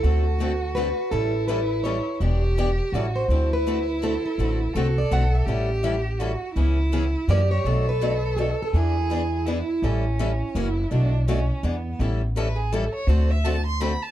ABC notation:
X:1
M:3/4
L:1/16
Q:"Swing" 1/4=166
K:Amix
V:1 name="Steel-string acoustic guitar"
A4 F4 B4 | A4 B4 c4 | z8 d2 =c2- | =c2 B4 z2 A2 A2- |
A2 z2 F2 d2 f2 e2- | e6 z6 | z8 d2 c2- | c2 B4- B3/2 ^G/2 A2 A2 |
E12- | E12- | E8 z4 | z12 |
z12 |]
V:2 name="Violin"
F12 | E12 | G8 F4 | E12- |
E4 A8 | G8 F4 | E8 G4 | A12 |
^G8 E4 | C8 E4 | D4 C4 B,4 | z4 B2 ^G2 A2 c2 |
=c2 e2 a2 =c'2 b2 a2 |]
V:3 name="Steel-string acoustic guitar"
[D,A,=CFA]2 z2 [D,A,CFA] z3 [D,A,CFA] z3 | [E,G,CEA]2 z2 [E,G,CEA] z3 [E,G,CEA] z3 | [E,B,DG]2 z2 [E,B,DG] z3 [E,G,CEA] z3 | [D,A,=CFA]2 z2 [D,A,CFA] z3 [D,A,CFA] z3 |
[D,A,=CFA]2 z2 [D,A,CFA] z3 [D,A,CFA] z3 | [E,G,CEA]2 z2 [E,G,CEA] z3 [E,G,CEA] z3 | [C,E,B,C^G]2 z2 [C,E,B,CG] z3 [C,E,^A,CF] z3 | [B,,F,A,DF]2 z2 [B,,F,A,DF] z3 [B,,F,A,DF] z3 |
[E,B,D^G]2 z2 [E,B,DG] z3 [E,B,DG] z3 | [E,G,CEA]2 z2 [E,G,CEA] z3 [C,E,^A,CF] z3 | [B,,F,A,DF]2 z2 [B,,F,A,DF] z3 [E,B,D^G] z3 | [E,G,CEA]2 z2 [E,G,CEA] z3 [E,G,CEA] z3 |
[D,A,=CFA]2 z2 [D,A,CFA] z3 [D,A,CFA] z3 |]
V:4 name="Upright bass" clef=bass
D,,12 | A,,,12 | E,,,8 A,,,4 | D,,12 |
A,,,4 =C,,4 B,,,4 | A,,,12 | C,,8 F,,4 | B,,,12 |
E,,12 | A,,,8 F,,,4 | B,,,8 E,,4 | A,,,12 |
D,,12 |]